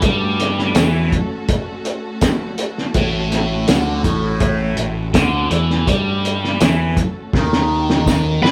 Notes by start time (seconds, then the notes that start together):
Already playing: A3 C#4 F#4 A4
0.02 G2 G3, kick, closed hi-hat
0.40 snare, closed hi-hat
0.59 snare
0.75 E2 E3, snare, closed hi-hat, tambourine
1.12 kick, closed hi-hat
1.49 kick, closed hi-hat
1.85 closed hi-hat
2.21 kick, snare, closed hi-hat, tambourine
2.58 closed hi-hat
2.78 snare
2.94 A1 A2, kick, closed hi-hat
3.32 snare, closed hi-hat
3.68 D2 D3, snare, closed hi-hat, tambourine
4.04 A1 A2, kick, closed hi-hat
4.40 kick, closed hi-hat
4.77 A1 A2, closed hi-hat
5.14 D2 D3, kick, snare, closed hi-hat, tambourine
5.50 E2 E3, closed hi-hat
5.70 snare
5.87 G2 G3, kick, closed hi-hat
6.25 closed hi-hat
6.44 snare
6.60 E2 E3, snare, closed hi-hat, tambourine
6.97 kick, closed hi-hat
7.33 D#2 D#3, kick, snare
7.53 snare
7.90 snare
8.06 kick, snare, tambourine
8.43 G2 G3 B4, snare